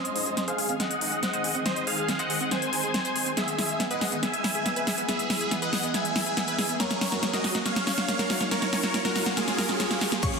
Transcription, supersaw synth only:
0.00 0.13 C5 medium
0.00 0.13 D#5 medium
0.16 0.43 C5 medium
0.16 0.43 D#5 loud
0.48 0.76 G#4 medium
0.48 0.76 F5 loud
0.80 1.57 D#5 medium
0.80 1.57 F#5 loud
1.66 1.84 C5 medium
1.66 1.84 D#5 loud
1.87 2.15 G#4 medium
1.87 2.15 F5 medium
2.19 2.47 D#5 medium
2.19 2.47 F#5 loud
2.51 3.29 C5 medium
2.51 3.29 G#5 loud
3.37 3.56 G#4 medium
3.37 3.56 E5 medium
3.58 3.86 G#4 medium
3.58 3.86 E5 loud
3.91 4.18 D#5 medium
3.91 4.18 F#5 medium
4.23 5.00 E5 medium
4.23 5.00 G#5 loud
5.09 5.27 G#4 medium
5.09 5.27 E5 loud
5.30 5.58 G#4 medium
5.30 5.58 E5 loud
5.62 5.90 D#5 medium
5.62 5.90 F#5 loud
5.94 6.71 E5 medium
5.94 6.71 G#5 loud
6.80 6.98 A#4 medium
6.80 6.98 C#5 loud
7.01 7.29 A#4 medium
7.01 7.29 C#5 loud
7.34 7.61 F#4 medium
7.34 7.61 D#5 loud
7.66 8.43 C#5 medium
7.66 8.43 F5 loud
8.51 8.70 A#4 medium
8.51 8.70 C#5 loud
8.73 9.01 A#4 medium
8.73 9.01 C#5 loud
9.05 9.33 F#4 medium
9.05 9.33 A#4 loud
9.37 10.14 F4 medium
9.37 10.14 G#4 loud
10.23 10.39 F4 medium
10.23 10.39 C#5 loud

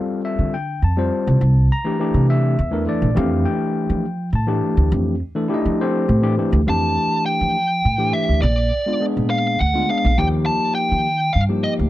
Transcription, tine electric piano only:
0.00 0.54 G3 medium
0.00 0.54 C4 medium
0.00 0.55 F4 medium
0.00 0.55 A4 medium
0.00 0.20 F5 medium
0.25 0.53 E5 medium
0.54 0.82 G5 medium
0.84 1.67 A5 medium
0.97 1.41 G3 medium
0.97 1.41 C4 medium
0.97 1.42 F4 medium
0.97 1.42 C5 medium
1.72 2.26 A#5 loud
1.85 1.96 E3 medium
1.85 1.96 A3 medium
1.85 1.96 D4 medium
1.85 1.97 G4 medium
1.99 2.55 E3 medium
1.99 2.55 A3 medium
1.99 2.55 D4 medium
1.99 2.56 G4 medium
2.30 2.84 E5 loud
2.71 2.83 E3 medium
2.71 2.83 A3 medium
2.71 2.84 D4 medium
2.71 2.84 A#4 medium
2.85 3.09 E3 medium
2.85 3.09 A3 medium
2.85 3.09 D4 medium
2.85 3.09 A4 medium
2.85 3.16 D5 loud
3.15 4.04 E3 medium
3.15 4.04 A3 medium
3.15 4.05 D4 medium
3.15 4.05 G4 medium
3.15 3.46 F5 medium
3.45 4.29 G5 medium
4.35 4.89 A5 medium
4.47 5.14 E3 medium
4.47 5.14 A3 medium
4.47 5.14 D4 medium
4.47 5.14 G4 medium
5.35 5.46 E3 medium
5.35 5.47 A3 medium
5.35 5.47 D4 medium
5.35 5.47 A4 medium
5.48 6.05 A3 medium
5.48 6.05 D4 medium
5.48 6.05 E4 medium
5.48 5.81 G4 medium
5.54 5.81 D#4 medium
5.54 5.81 D#5 medium
5.81 6.50 C4 medium
5.81 6.22 G4 medium
5.81 6.50 A4 medium
5.81 6.50 C5 loud
6.22 6.34 E3 medium
6.22 6.34 A3 medium
6.22 6.34 D4 medium
6.22 6.34 G4 loud
6.37 6.60 E3 medium
6.37 6.60 A3 medium
6.37 6.61 D4 medium
6.37 6.61 G4 medium
6.67 7.55 E3 medium
6.67 7.55 A3 medium
6.67 7.56 D4 medium
6.67 7.56 G4 medium
7.98 8.42 E3 medium
7.98 8.42 A3 medium
7.98 8.43 D4 medium
7.98 8.43 G4 medium
8.86 8.97 G#3 medium
8.86 8.98 B3 medium
8.86 8.98 D4 medium
8.86 8.98 F4 medium
9.00 9.56 G#3 medium
9.00 9.56 B3 medium
9.00 9.56 D4 medium
9.00 9.57 G#4 medium
9.74 9.85 G#3 medium
9.74 9.85 B3 medium
9.74 9.86 D4 medium
9.74 9.86 F4 medium
9.88 10.11 G#3 medium
9.88 10.11 B3 medium
9.88 10.11 D4 medium
9.88 10.12 G#4 medium
10.17 11.06 F3 medium
10.17 11.06 A#3 medium
10.17 11.07 D#4 medium
10.17 11.07 G4 medium
11.49 11.90 F3 medium
11.49 11.90 A#3 medium
11.49 11.90 D#4 medium
11.49 11.90 G4 medium

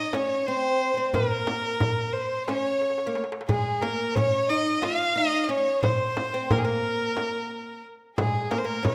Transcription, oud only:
0.00 0.14 D#4 medium
0.14 0.47 C#4 medium
0.48 0.90 C4 medium
0.94 1.14 C4 medium
0.94 0.97 C#4 soft
1.14 2.52 A#3 medium
2.49 3.09 C#4 medium
3.07 3.22 A#3 medium
3.49 3.82 G#3 medium
3.82 4.17 A#3 medium
4.17 4.48 C#4 medium
4.50 4.82 D#4 medium
4.82 5.14 F4 medium
5.16 5.48 D#4 medium
5.49 5.82 C#4 medium
5.83 6.33 C4 medium
6.34 6.51 C4 medium
6.51 6.63 A#3 medium
6.65 7.81 A#3 medium
8.18 8.49 G#3 medium
8.51 8.63 A#3 medium
8.64 8.83 A#3 medium
8.83 8.95 C#4 medium

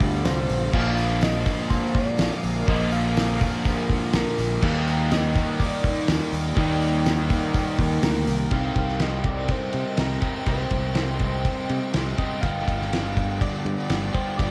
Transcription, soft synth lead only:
0.24 0.75 C5 loud
0.73 1.25 F5 loud
1.23 1.71 D#5 loud
1.70 1.96 C5 loud
1.95 2.71 D5 loud
2.69 2.94 D#5 loud
2.92 4.16 F5 loud
4.15 4.63 A#4 medium
4.64 5.13 F5 loud
5.12 5.61 D#5 loud
5.59 8.03 D5 medium
8.04 8.54 A#4 loud
8.53 8.76 F5 loud
8.78 9.04 F5 loud
9.02 9.27 D#5 loud
9.26 9.53 D5 medium
9.51 10.01 C5 loud
9.99 10.47 A#4 medium
10.48 10.93 C5 loud
10.96 12.20 C5 loud
12.18 12.43 D#5 loud
12.41 12.89 F5 loud
12.90 13.43 F5 loud
13.41 13.90 D5 medium
14.14 14.39 C5 medium
14.37 14.51 D5 loud

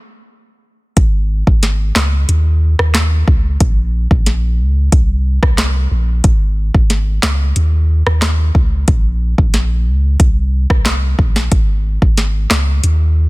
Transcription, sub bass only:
0.97 1.43 G#1 loud
1.47 1.92 G#1 loud
1.96 2.25 C#2 medium
2.29 2.75 D#2 loud
2.79 3.23 D#2 medium
3.28 3.57 C#2 loud
3.60 4.07 A#1 loud
4.11 4.61 A#1 loud
4.59 4.89 C#2 medium
4.92 5.39 C2 loud
5.43 5.87 C2 loud
5.91 6.21 A#1 medium
6.24 6.71 G#1 loud
6.74 7.19 G#1 loud
7.23 7.53 C#2 medium
7.56 8.03 D#2 loud
8.06 8.51 D#2 loud
8.55 8.85 C#2 medium
8.88 9.34 A#1 loud
9.38 9.88 A#1 loud
9.87 10.17 C#2 medium
10.20 10.66 C2 loud
10.70 11.15 C2 medium
11.19 11.48 A#1 medium
11.52 11.98 G#1 loud
12.02 12.47 G#1 loud
12.51 12.80 C#2 medium
12.84 13.29 D#2 loud

